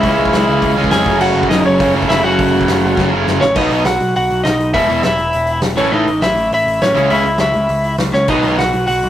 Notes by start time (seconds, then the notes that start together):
Already playing: E4 E5
0.02 C#2 C#3 E3 G#3 C#4, kick, open hi-hat
0.19 C#2
0.25 kick
0.33 C#2, snare, open hi-hat
0.48 C#2
0.62 C#2, kick, open hi-hat
0.76 C#2 C#3 E3 G#3 C#4
0.84 kick
0.91 F2 C#3 E3 G#3 C#4 G#4 G#5, snare, open hi-hat
1.06 F#1 F#2 C#3 F#3 A3 C#4, kick
1.21 F#1 F#4 F#5, crash
1.35 F#1
1.43 kick
1.49 F#1 D#4 D#5, snare, open hi-hat
1.64 F#1 C#4 C#5
1.79 F#1 F#2 C#3 F#3 A3 C#4, kick, open hi-hat
1.94 F#1 F#2 C#3 F#3 A3 C#4
2.02 kick
2.09 F#1 E4 E5, snare, open hi-hat
2.23 F#1 F#2 C#3 F#3 A3 C#4 F#4 F#5
2.39 F#1, kick, open hi-hat
2.53 F#1
2.61 kick
2.68 F#1, snare, open hi-hat
2.82 F#1
2.95 F#1 F#2 C#3 F#3 A3 C#4, kick, snare
3.11 F#1 F#2 C#3 F#3 A3 C#4
3.27 F#1, snare
3.41 A1 C#4 C#5, snare
3.55 B1 B2 F#3 B3 D#4 D#5, kick, crash
3.69 B1 B2 F#3 B3 D#4, open hi-hat
3.85 B1 F#4 F#5, snare, open hi-hat
4.00 B1, open hi-hat
4.16 B1 F#4 F#5, open hi-hat
4.30 B1, open hi-hat
4.44 B1 D#4 D#5, snare, open hi-hat
4.60 open hi-hat
4.73 E1 E2 B2 E3 G#3 B3 E4 E5, kick, open hi-hat
4.87 E1 E2 B2 E3 G#3 B3 E4, open hi-hat
5.03 E1 E4 E5, snare, open hi-hat
5.18 E1, open hi-hat
5.33 E1, open hi-hat
5.47 open hi-hat
5.62 E1, snare, open hi-hat
5.76 A1 A2 E3 A3 C#4 E4 C#5, crash
5.91 A1 A2 E3 A3 C#4 D#4 E4 D#5
6.07 A1, open hi-hat
6.22 A1 E4 E5, snare, open hi-hat
6.36 A1, open hi-hat
6.51 A1 E4 E5, open hi-hat
6.67 A1, open hi-hat
6.82 A1 C#4 C#5, snare, open hi-hat
6.94 C#2 C#3 G#3 C#4 E4, open hi-hat
7.09 C#2 C#3 G#3 C#4 E4 E5, open hi-hat
7.25 C#2, open hi-hat
7.38 C#2 E4 E5, snare, open hi-hat
7.53 C#2, open hi-hat
7.69 C#2, open hi-hat
7.84 open hi-hat
7.98 C#2, snare, open hi-hat
8.13 C#2 C#4 C#5, snare
8.28 B1 B2 D#3 F#3 B3 D#4 D#5, kick, crash
8.42 B1 B2 D#3 F#3 B3 D#4, open hi-hat
8.58 B1 F#4 F#5, snare, open hi-hat
8.73 B1, open hi-hat
8.87 B1 F#4 F#5, open hi-hat
9.03 B1, open hi-hat